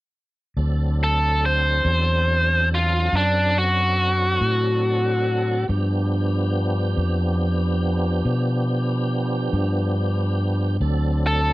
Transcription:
0.57 fingered electric bass D2, tonewheel organ F#3 C4 D4 A4
1.04 lead electric guitar A4
1.46 lead electric guitar C5
1.85 fingered electric bass E2
2.75 lead electric guitar F4
3.13 fingered electric bass F#2, lead electric guitar D4
3.58 lead electric guitar F#4
4.41 fingered electric bass A2
5.68 fingered electric bass G2, tonewheel organ F3 B3 D4 G4
6.97 fingered electric bass F2
8.25 fingered electric bass B2
9.53 fingered electric bass G2
10.80 fingered electric bass D2, tonewheel organ F#3 C4 D4 A4
11.27 lead electric guitar A4

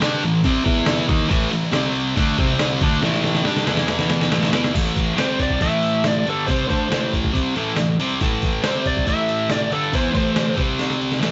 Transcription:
0.02 distorted electric guitar G3 D4 G4, snare, crash
0.23 distorted electric guitar A2 E3, crash
0.44 distorted electric guitar C3 G3 C4, kick, crash
0.65 distorted electric guitar E3 B3 E4, kick, crash
0.76 snare
0.86 snare, crash
1.07 distorted electric guitar D#3 A#3 D#4, kick, crash
1.29 distorted electric guitar A2 E3 A3, kick, crash
1.52 distorted electric guitar A2 E3, crash
1.63 snare
1.72 distorted electric guitar C3 G3 C4, snare, crash
1.95 crash
2.16 distorted electric guitar D3 A3 D4, kick, crash
2.37 distorted electric guitar C3 G3 C4, kick, crash
2.49 snare
2.59 snare, crash
2.81 distorted electric guitar D3 A3 D4, kick, crash
3.02 distorted electric guitar A2 E3 A3, snare
3.14 snare
3.24 snare
3.35 snare
3.44 distorted electric guitar G3 D4 G4, snare
3.56 snare
3.67 distorted electric guitar E3 B3 E4, snare
3.77 snare
3.88 snare
3.99 snare
4.10 snare
4.21 snare
4.31 distorted electric guitar A2 E3 A3, snare
4.43 snare
4.52 distorted electric guitar E3 B3 E4, snare
4.64 snare
4.74 distorted electric guitar A2 E3 A3, kick, open hi-hat, crash
4.96 kick, open hi-hat
5.17 distorted electric guitar C3 G3 C4, electric slide guitar C5, snare, open hi-hat
5.39 electric slide guitar D5, kick, open hi-hat
5.50 kick
5.61 distorted electric guitar A2 E3 A3, electric slide guitar E5, kick, open hi-hat
5.83 open hi-hat
6.04 electric slide guitar D5, snare, open hi-hat
6.26 distorted electric guitar G2 D3 G3, electric slide guitar A4, open hi-hat
6.47 distorted electric guitar C3 G3 C4, electric slide guitar C5, kick, open hi-hat
6.68 distorted electric guitar D3 A3 D4, electric slide guitar C5, kick, open hi-hat
6.90 distorted electric guitar A2 E3 A3, snare, open hi-hat
7.13 kick, open hi-hat
7.24 kick
7.32 distorted electric guitar C3 G3 C4, kick, open hi-hat
7.56 distorted electric guitar A2 E3 A3, open hi-hat
7.76 distorted electric guitar A2 E3, snare, open hi-hat
8.00 distorted electric guitar C3 G3 C4, open hi-hat
8.20 distorted electric guitar A2 E3 A3, kick, open hi-hat
8.42 kick, open hi-hat
8.63 distorted electric guitar C3 G3 C4, electric slide guitar C5, snare, open hi-hat
8.86 electric slide guitar D5, kick, open hi-hat
8.97 kick
9.06 distorted electric guitar A2 E3 A3, electric slide guitar E5, kick, open hi-hat
9.29 open hi-hat
9.50 electric slide guitar D5, snare, open hi-hat
9.70 distorted electric guitar G2 D3 G3, electric slide guitar A4, open hi-hat
9.93 distorted electric guitar E3 B3 E4, electric slide guitar C5, kick, open hi-hat
10.12 distorted electric guitar A2 E3 A3, kick, open hi-hat
10.17 electric slide guitar C5
10.36 snare, open hi-hat
10.56 distorted electric guitar C3 G3 C4, kick, open hi-hat
10.79 snare, open hi-hat
10.90 snare
11.01 open hi-hat
11.12 snare
11.21 distorted electric guitar A2 E3 A3, snare, open hi-hat

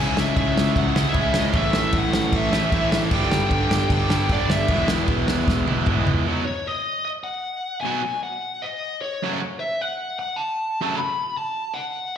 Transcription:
Already playing: picked electric bass C#2, distorted electric guitar C#3 G#3, lead electric guitar G#5
0.00 distorted electric guitar C#4 E4
0.17 picked electric bass C#2, lead electric guitar E5, snare
0.37 picked electric bass C#2, lead electric guitar E5, kick, crash
0.56 picked electric bass C#2, snare
0.76 picked electric bass C#2, lead electric guitar F#5, kick, crash
0.95 picked electric bass C#2, distorted electric guitar C#3 G#3 C#4 E4, snare
1.09 lead electric guitar E5
1.14 picked electric bass C#2, distorted electric guitar C#3 G#3 C#4, kick, crash
1.18 distorted electric guitar E4
1.34 picked electric bass C#2, snare
1.39 lead electric guitar D#5
1.52 picked electric bass A1, distorted electric guitar A2 E3 A3 C#4 E4, lead electric guitar E5, kick, crash
1.73 picked electric bass A1, snare
1.93 picked electric bass A1, kick, crash
1.98 lead electric guitar F#5
2.13 picked electric bass A1, snare
2.32 picked electric bass A1, lead electric guitar E5, kick, crash
2.51 picked electric bass A1, distorted electric guitar E3 A3 C#4 E4, snare
2.55 distorted electric guitar A2
2.70 picked electric bass A1, distorted electric guitar A2 E3 A3 C#4 E4, kick, crash
2.91 picked electric bass A1, lead electric guitar E5, snare
3.11 picked electric bass G1, distorted electric guitar G2 D3 G3 B3 D4, lead electric guitar G5, kick, crash
3.32 picked electric bass G1, snare
3.51 picked electric bass G1, kick, crash
3.70 picked electric bass G1, snare
3.90 picked electric bass G1, lead electric guitar G5, kick, crash
4.08 picked electric bass G1, distorted electric guitar G2 D3 G3 B3 D4, snare
4.13 lead electric guitar G5
4.29 picked electric bass G1, distorted electric guitar G2 D3 G3 B3 D4, lead electric guitar D5, kick, crash
4.48 picked electric bass G1, lead electric guitar E5, snare
4.67 picked electric bass E1, distorted electric guitar E2 B2 E3, kick, crash
4.71 distorted electric guitar G#3 B3 E4
4.88 picked electric bass E1, snare
5.08 picked electric bass E1, kick, crash
5.28 picked electric bass E1, snare
5.48 picked electric bass E1, kick, snare
5.67 picked electric bass E1, distorted electric guitar E2 B2 E3 G#3 B3 E4, high tom
5.71 distorted electric guitar E3
5.86 picked electric bass E1, distorted electric guitar E2 B2 E3 G#3 B3, kick, mid tom
5.91 distorted electric guitar E4
6.06 picked electric bass C#2, floor tom
6.27 distorted electric guitar B2 F#3 B3 D#4 F#4
6.45 lead electric guitar C#5
6.67 lead electric guitar D#5
7.05 lead electric guitar D#5
7.24 lead electric guitar F#5
7.81 lead electric guitar G#5
7.85 distorted electric guitar B2 F#3 B3 D#4 F#4
8.23 lead electric guitar F#5
8.62 lead electric guitar D#5
9.02 lead electric guitar C#5
9.23 distorted electric guitar F#2 C#3 F#3 A3 C#4 F#4
9.60 lead electric guitar E5
9.81 lead electric guitar F#5
10.19 lead electric guitar F#5
10.36 lead electric guitar A5
10.81 distorted electric guitar F#2 C#3 F#3 A3 C#4 F#4
10.97 lead electric guitar B5
11.37 lead electric guitar A5
11.74 lead electric guitar F#5

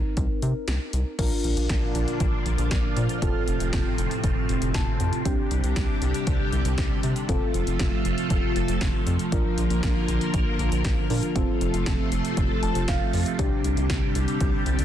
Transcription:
Already playing: synth keys C4 D#4 A#4
0.17 analog synth bass C2, kick, closed hi-hat
0.42 analog synth bass C3, closed hi-hat
0.68 analog synth bass C2, snare, closed hi-hat
0.93 analog synth bass C2, closed hi-hat
1.19 analog synth bass A#1, string machine A#2 D3 F3 D4 F4, synth keys D4 F4 A#4, kick, closed hi-hat, crash
1.44 analog synth bass A#1, closed hi-hat
1.57 analog synth bass A#1, closed hi-hat
1.69 analog synth bass A#1, kick, snare, closed hi-hat
1.95 analog synth bass A#1, closed hi-hat
2.08 closed hi-hat
2.20 analog synth bass A#1, kick, closed hi-hat
2.46 analog synth bass A#1, closed hi-hat
2.58 analog synth bass A#1, closed hi-hat
2.71 analog synth bass A#1, kick, snare, closed hi-hat
2.97 analog synth bass A#2, closed hi-hat
3.09 closed hi-hat
3.22 analog synth bass F1, string machine A2 C3 C4, synth keys C4 F4 A4, kick, closed hi-hat
3.48 analog synth bass F1, closed hi-hat
3.60 analog synth bass F1, closed hi-hat
3.73 analog synth bass F1, kick, snare, closed hi-hat
3.98 analog synth bass F1, closed hi-hat
4.11 closed hi-hat
4.24 analog synth bass F1, kick, closed hi-hat
4.49 analog synth bass F1, closed hi-hat
4.62 analog synth bass F1, closed hi-hat
4.74 analog synth bass F1, synth keys A5, kick, snare, closed hi-hat
5.00 analog synth bass F2, closed hi-hat
5.13 closed hi-hat
5.25 analog synth bass C2, string machine D3 G3 D4 G4, synth keys C4 D4 G4, kick, closed hi-hat
5.51 analog synth bass C2, closed hi-hat
5.64 analog synth bass C2, closed hi-hat
5.76 analog synth bass C2, kick, snare, closed hi-hat
6.02 analog synth bass C2, closed hi-hat
6.14 closed hi-hat
6.27 analog synth bass C2, kick, closed hi-hat
6.53 analog synth bass C2, closed hi-hat
6.65 analog synth bass C2, closed hi-hat
6.78 analog synth bass C2, kick, snare, closed hi-hat
7.03 analog synth bass C3, closed hi-hat
7.16 closed hi-hat
7.29 analog synth bass F1, string machine F3 A3 F4 A4, synth keys C4 F4 A4, kick, closed hi-hat
7.54 analog synth bass F1, closed hi-hat
7.67 analog synth bass F1, closed hi-hat
7.79 analog synth bass F1, kick, snare, closed hi-hat
8.05 analog synth bass F1, closed hi-hat
8.18 closed hi-hat
8.30 analog synth bass F1, kick, closed hi-hat
8.56 analog synth bass F1, closed hi-hat
8.68 analog synth bass F1, closed hi-hat
8.81 analog synth bass F1, kick, snare, closed hi-hat
9.07 analog synth bass F2, closed hi-hat
9.19 closed hi-hat
9.32 analog synth bass A#1, string machine D3 A#3 F4 A#4, synth keys D4 F4 A#4, kick, closed hi-hat
9.58 analog synth bass A#1, closed hi-hat
9.70 analog synth bass A#1, closed hi-hat
9.83 analog synth bass A#1, kick, snare, closed hi-hat
10.08 analog synth bass A#1, closed hi-hat
10.21 closed hi-hat
10.34 analog synth bass A#1, kick, closed hi-hat
10.59 analog synth bass A#1, closed hi-hat
10.72 analog synth bass A#1, closed hi-hat
10.84 analog synth bass A#1, kick, snare, closed hi-hat
11.10 analog synth bass A#2, synth keys D4 F4 A#4, open hi-hat
11.23 closed hi-hat
11.36 analog synth bass F1, string machine C3 F3 A3 F4 A4, synth keys C4 F4 A4, kick, closed hi-hat
11.61 analog synth bass F1, closed hi-hat
11.74 analog synth bass F1, closed hi-hat
11.86 analog synth bass F1, kick, snare, closed hi-hat
12.12 analog synth bass F1, closed hi-hat
12.25 closed hi-hat
12.37 analog synth bass F1, kick, closed hi-hat
12.63 analog synth bass F1, synth keys A5, closed hi-hat
12.75 analog synth bass F1, closed hi-hat
12.88 analog synth bass F1, synth keys F5, kick, snare, closed hi-hat
13.13 analog synth bass F2, open hi-hat
13.26 closed hi-hat
13.39 analog synth bass C2, string machine D3 G3 D4 G4, synth keys C4 D4 G4, kick, closed hi-hat
13.64 analog synth bass C2, closed hi-hat
13.77 analog synth bass C2, closed hi-hat
13.90 analog synth bass C2, kick, snare, closed hi-hat
14.15 analog synth bass C2, closed hi-hat
14.28 closed hi-hat
14.41 analog synth bass C2, kick, closed hi-hat
14.66 analog synth bass C2, closed hi-hat
14.79 analog synth bass C2, closed hi-hat

